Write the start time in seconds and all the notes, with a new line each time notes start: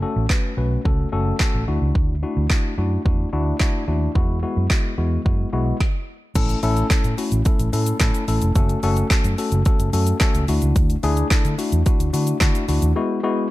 0.02 A3 C#4 F#4 A4
0.16 A1
0.29 A3 C#4 F#4 B4, kick, snare, clap
0.57 B1 A3 C#4 F#4 B4
0.85 C#2 A3 C#4 F#4 A4, kick
1.12 F#1 A3 C#4 F#4 A4
1.39 A3 C#4 F#4 A4, kick, snare, clap
1.54 A1
1.68 D2 A3 D4 E4 F#4
1.82 C#2
1.95 kick
2.23 A3 D4 E4 F#4
2.37 D2
2.50 A3 D4 E4 F#4, kick, snare, clap
2.78 F#2 A3 D4 E4 F#4
3.05 E2 A3 D4 E4 F#4, kick
3.33 D2 A3 D4 E4 F#4
3.60 A3 D4 E4 F#4, kick, snare, clap
3.88 D#2 A3 D4 E4 F#4
4.15 E2 G#3 B3 E4 F#4, kick
4.43 G#3 B3 E4 F#4
4.57 F#2
4.70 G#3 B3 E4 F#4, kick, snare, clap
4.98 E2 G#3 B3 E4 F#4
5.25 F#2 G#3 B3 E4 F#4, kick
5.53 B1 G#3 B3 E4 F#4
5.80 kick, snare
6.35 A1 A3 C#4 E4 A4, kick, closed hi-hat, crash, shaker
6.49 closed hi-hat, shaker
6.63 A1 A3 C#4 E4 A4, open hi-hat, shaker
6.77 closed hi-hat, shaker
6.90 muted fingered electric bass stroke, kick, snare, clap, closed hi-hat, shaker
7.04 A2, closed hi-hat, shaker
7.18 A3 C#4 E4 F#4, open hi-hat, shaker
7.32 A1, closed hi-hat, shaker
7.45 A3 C#4 E4 A4, kick, closed hi-hat, shaker
7.59 A1, closed hi-hat, shaker
7.73 A2 A3 C#4 E4 A4, open hi-hat, shaker
7.86 closed hi-hat, shaker
8.00 A2 A3 C#4 E4 A4, kick, snare, clap, closed hi-hat, shaker
8.15 closed hi-hat, shaker
8.28 A1 A3 C#4 E4 A4, open hi-hat, shaker
8.42 F1, closed hi-hat, shaker
8.55 F#1 A3 C#4 F#4 A4, kick, closed hi-hat, shaker
8.69 closed hi-hat, shaker
8.83 F#1 A3 C#4 F#4 A4, open hi-hat, shaker
8.97 closed hi-hat, shaker
9.10 A3 C#4 F#4 A4, muted fingered electric bass stroke, kick, snare, clap, closed hi-hat, shaker
9.24 F#2, closed hi-hat, shaker
9.38 A3 C#4 F#4 A4, open hi-hat, shaker
9.52 F#1, closed hi-hat, shaker
9.65 A3 C#4 F#4 A4, kick, closed hi-hat, shaker
9.79 F#1, closed hi-hat, shaker
9.93 F#2 A3 C#4 F#4 A4, open hi-hat, shaker
10.07 closed hi-hat, shaker
10.20 A3 C#4 F#4 A4, kick, snare, clap, closed hi-hat, shaker
10.35 C#2, closed hi-hat, shaker
10.48 D2 A3 D4 E4 F#4, open hi-hat, shaker
10.62 C#2, closed hi-hat, shaker
10.76 D2, kick, closed hi-hat, shaker
10.90 closed hi-hat, shaker
11.03 D2 A3 D4 E4 G#4, open hi-hat, shaker
11.17 closed hi-hat, shaker
11.30 A3 E4 A4, muted fingered electric bass stroke, kick, snare, clap, closed hi-hat, shaker
11.45 D3, closed hi-hat, shaker
11.58 A3 D4 E4 F#4, open hi-hat, shaker
11.72 E2, closed hi-hat, shaker
11.86 A3 D4 E4 F#4, kick, closed hi-hat, shaker
12.00 D2, closed hi-hat, shaker
12.13 D3 A3 D4 E4 F#4, open hi-hat, shaker
12.27 closed hi-hat, shaker
12.40 D3 A3 D4 E4 F#4, kick, snare, clap, closed hi-hat, shaker
12.55 closed hi-hat, shaker
12.68 D2 A3 D4 E4 F#4, open hi-hat, shaker
12.82 D#2, closed hi-hat, shaker
12.96 G#3 B3 E4 F#4
13.23 G#3 B3 E4 F#4